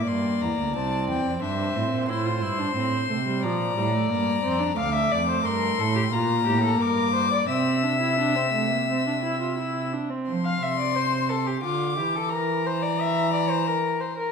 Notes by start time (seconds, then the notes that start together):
Already playing: A#3
0.06 G2 D5 C6
0.41 E2 A#5
0.58 D2
0.75 C2 C4 A5
1.08 E2 G5
1.25 F2
1.42 G2 D4 C5 E5
1.75 A2 C4
1.91 A#2
2.08 A2 E4 C5 C6
2.26 F4
2.42 G2 E4
2.59 D4
2.75 A2 C4
3.10 C3 A3
3.26 G3
3.43 A#2 F3 D5 A#5
3.77 A2 G3
3.93 A3
4.10 G2 A#3 A#5
4.43 F2 C4
4.60 D4
4.76 D2 A3 F5 D6
4.94 E5
5.12 F2 D5
5.29 C5
5.45 G2 A#4 C6
5.78 A2 A4
5.95 G4
6.11 A#2 A#3 F4 A#5
6.46 A2 G4
6.64 A4
6.80 G2 A#4 D6
7.14 C5
7.32 D5
7.49 C3 C4 E5 E6
7.83 D4
8.01 E4
8.18 D4
8.36 C4
8.53 A3
8.71 A#3
8.89 C4
9.06 D4
9.23 E4
9.40 F4
9.58 E4
9.93 D4
10.10 C4
10.27 F3 C6
10.46 F5
10.62 C3 E5
10.79 D5
10.96 C5
11.29 A4
11.47 G4
11.63 D3 F4 D6
11.97 E3 G4
12.16 A4
12.29 A#4 A#5
12.66 C5
12.82 D5
13.00 E5
13.33 D5
13.50 C5
13.67 A#4
14.00 C5
14.18 A#4